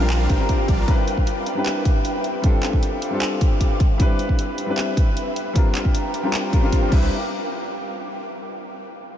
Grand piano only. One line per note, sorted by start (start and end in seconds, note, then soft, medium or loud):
0.00 0.28 G3 medium
0.00 0.29 C4 medium
0.00 0.29 D4 medium
0.00 0.30 F4 medium
0.00 0.30 A#4 medium
0.28 0.36 G3 medium
0.28 0.37 C4 medium
0.28 0.37 D4 medium
0.28 0.37 F4 medium
0.28 0.38 A#4 medium
0.37 0.84 G3 loud
0.37 0.85 C4 medium
0.37 0.86 D4 medium
0.37 0.86 F4 medium
0.37 0.87 A#4 loud
0.86 1.53 G3 medium
0.86 1.54 C4 medium
0.86 1.54 D4 medium
0.86 1.55 E4 medium
0.86 1.55 B4 medium
1.55 2.40 G3 medium
1.55 2.41 C4 medium
1.55 2.42 D4 medium
1.55 2.42 E4 medium
1.55 2.43 B4 medium
2.42 3.09 G3 medium
2.42 3.09 C4 medium
2.42 3.10 D4 medium
2.42 3.10 F4 medium
2.42 3.11 A4 medium
3.10 3.78 G3 medium
3.10 3.78 C4 medium
3.10 3.79 D4 medium
3.10 3.79 F4 medium
3.10 3.80 A4 medium
3.98 4.65 G3 medium
3.98 4.65 C4 medium
3.98 4.66 D4 medium
3.98 4.66 E4 medium
4.02 4.67 B4 medium
4.66 5.52 G3 medium
4.66 5.53 C4 medium
4.66 5.53 D4 medium
4.66 5.54 E4 medium
4.70 5.54 B4 medium
5.53 6.21 G3 medium
5.53 6.21 C4 medium
5.53 6.22 D4 medium
5.53 6.22 F4 medium
5.57 6.23 A#4 medium
6.23 6.50 G3 medium
6.23 6.51 C4 medium
6.23 6.51 D4 medium
6.23 6.51 F4 medium
6.23 6.52 A#4 medium
6.52 6.59 G3 medium
6.52 6.60 C4 medium
6.52 6.61 D4 medium
6.52 6.61 F4 medium
6.52 6.61 A#4 medium
6.61 6.88 G3 medium
6.61 6.89 C4 medium
6.61 6.90 D4 medium
6.61 6.92 F4 medium
6.61 6.93 A#4 loud
6.89 7.05 G3 medium
6.89 7.06 C4 medium
6.89 7.07 D4 medium
6.93 7.07 E4 medium
6.93 7.08 B4 medium